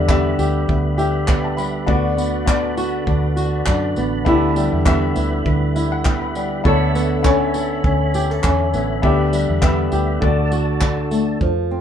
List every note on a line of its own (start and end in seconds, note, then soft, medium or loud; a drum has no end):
0.00 0.35 E2 medium
0.00 1.87 D3 medium
0.00 1.57 G3 medium
0.00 0.08 B3 medium
0.00 0.09 G4 medium
0.00 0.38 G4 medium
0.00 1.86 G4 medium
0.00 6.61 B4 medium
0.00 0.10 E5 loud
0.00 1.85 E5 medium
0.00 6.61 B5 medium
0.08 1.08 B3 medium
0.08 0.68 B3 medium
0.08 1.09 G4 medium
0.08 0.97 E5 medium
0.08 kick loud
0.08 clap loud
0.39 0.66 D2 medium
0.39 0.97 G4 medium
0.39 tambourine medium
0.68 1.84 D2 medium
0.68 1.28 B3 medium
0.68 kick loud
0.98 1.87 G4 medium
0.98 1.26 E5 medium
0.98 tambourine medium
1.28 2.17 B3 medium
1.28 1.43 G5 medium
1.28 kick loud
1.28 clap loud
1.44 1.57 A5 medium
1.57 1.94 G3 medium
1.57 1.85 B5 medium
1.57 tambourine medium
1.86 3.03 D2 loud
1.86 4.25 D3 medium
1.86 2.38 B3 medium
1.86 2.38 F#4 medium
1.86 2.76 F#4 medium
1.86 4.24 F#4 medium
1.86 2.39 D5 medium
1.86 4.24 D5 medium
1.86 kick loud
2.17 3.97 B3 medium
2.17 tambourine medium
2.46 3.47 B3 medium
2.46 3.06 D4 medium
2.46 3.47 F#4 medium
2.46 3.48 D5 medium
2.46 kick loud
2.46 clap loud
2.77 3.35 F#4 medium
2.77 tambourine medium
3.07 3.63 D2 medium
3.07 3.66 D4 medium
3.07 kick loud
3.37 4.26 F#4 medium
3.37 tambourine medium
3.66 3.94 F#2 medium
3.66 4.33 D4 medium
3.66 kick loud
3.66 clap loud
3.96 4.24 A1 medium
3.96 4.56 B3 medium
3.96 tambourine medium
4.25 4.69 D2 loud
4.25 6.64 D3 medium
4.25 4.76 B3 medium
4.25 5.15 E4 medium
4.25 4.77 G4 medium
4.25 6.62 G4 medium
4.25 6.62 E5 medium
4.25 4.77 E5 medium
4.25 kick loud
4.56 6.35 G3 medium
4.56 tambourine medium
4.73 5.13 E2 medium
4.85 5.86 B3 medium
4.85 5.46 B3 medium
4.85 5.86 G4 medium
4.85 5.74 E5 loud
4.85 kick loud
4.85 clap loud
5.16 5.44 D2 medium
5.16 5.76 E4 medium
5.16 tambourine medium
5.46 6.61 D2 medium
5.46 6.06 B3 medium
5.46 kick loud
5.76 6.66 E4 medium
5.76 5.91 E5 medium
5.76 tambourine medium
5.92 6.04 F#5 medium
6.05 6.95 B3 medium
6.05 6.21 G5 medium
6.05 kick loud
6.05 clap loud
6.22 6.62 B5 medium
6.35 6.72 G3 medium
6.35 tambourine medium
6.64 7.80 D2 loud
6.64 9.02 D3 medium
6.64 7.15 B3 medium
6.64 7.15 A4 medium
6.64 7.54 A4 medium
6.64 9.01 A4 medium
6.64 7.16 C#5 loud
6.64 9.02 C#5 medium
6.64 9.02 E5 medium
6.64 10.19 B5 medium
6.64 kick loud
6.95 8.73 B3 medium
6.95 tambourine medium
7.23 8.23 B3 medium
7.23 7.83 C#4 medium
7.23 8.24 A4 medium
7.23 8.24 C#5 medium
7.23 kick loud
7.23 clap loud
7.54 8.14 A4 medium
7.54 tambourine medium
7.84 8.40 D2 medium
7.84 8.43 C#4 medium
7.84 kick loud
8.14 8.31 G4 medium
8.14 tambourine medium
8.31 9.04 A4 medium
8.43 8.71 E2 medium
8.43 9.10 C#4 medium
8.43 kick loud
8.43 clap loud
8.73 9.01 A1 medium
8.73 9.10 B3 medium
8.73 tambourine medium
9.02 9.45 D2 loud
9.02 10.20 D3 medium
9.02 9.53 B3 medium
9.02 9.54 G4 medium
9.02 10.21 G4 medium
9.02 9.91 G4 medium
9.02 10.21 B4 medium
9.02 10.22 E5 medium
9.02 9.54 E5 medium
9.02 kick loud
9.33 10.29 G3 medium
9.33 tambourine medium
9.50 9.89 E2 medium
9.62 10.22 B3 medium
9.62 10.29 B3 medium
9.62 10.22 G4 medium
9.62 10.23 E5 medium
9.62 kick loud
9.62 clap loud
9.92 10.20 D2 medium
9.92 10.29 G4 medium
9.92 tambourine medium
10.21 11.37 D2 loud
10.21 11.48 D3 medium
10.21 11.22 A3 medium
10.21 11.40 F#4 medium
10.21 11.22 F#4 medium
10.21 11.40 A4 medium
10.21 11.40 D5 medium
10.21 11.23 D5 medium
10.21 11.40 A5 medium
10.21 kick loud
10.52 11.48 F#4 medium
10.52 tambourine medium
10.81 11.48 D4 medium
10.81 kick loud
10.81 clap loud
11.11 11.81 A3 medium
11.11 tambourine medium
11.41 11.81 F2 medium
11.41 11.81 F3 medium
11.41 kick loud
11.71 11.81 C4 soft